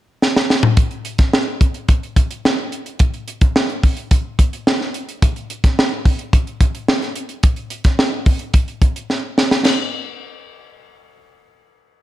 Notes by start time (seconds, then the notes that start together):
0.22 snare
0.36 snare
0.50 snare
0.63 mid tom
0.77 kick, closed hi-hat
0.91 closed hi-hat
1.05 closed hi-hat
1.18 kick, snare, closed hi-hat
1.33 snare
1.61 kick, closed hi-hat
1.74 closed hi-hat
1.88 kick, closed hi-hat
2.03 closed hi-hat
2.16 kick, closed hi-hat
2.31 closed hi-hat
2.45 snare
2.72 closed hi-hat
2.86 closed hi-hat
2.99 kick, closed hi-hat
3.14 closed hi-hat
3.28 closed hi-hat
3.41 kick, closed hi-hat
3.56 snare
3.70 closed hi-hat
3.83 kick, open hi-hat
3.97 closed hi-hat
4.11 kick, closed hi-hat
4.39 kick, closed hi-hat
4.53 closed hi-hat
4.67 snare
4.81 snare
4.94 closed hi-hat
5.09 closed hi-hat
5.22 kick, closed hi-hat
5.36 closed hi-hat
5.50 closed hi-hat
5.64 kick, snare, closed hi-hat
5.79 snare
6.05 kick, open hi-hat
6.19 closed hi-hat
6.33 kick, closed hi-hat
6.47 closed hi-hat
6.61 kick, closed hi-hat
6.75 closed hi-hat
6.88 snare
7.02 snare, closed hi-hat
7.16 closed hi-hat
7.29 closed hi-hat
7.43 kick, closed hi-hat
7.56 closed hi-hat
7.70 closed hi-hat
7.84 kick, snare, closed hi-hat
7.99 snare
8.26 kick, open hi-hat
8.39 closed hi-hat
8.54 kick, closed hi-hat
8.68 closed hi-hat
8.82 kick, closed hi-hat
8.96 closed hi-hat
9.10 snare
9.38 snare
9.51 snare
9.65 snare, crash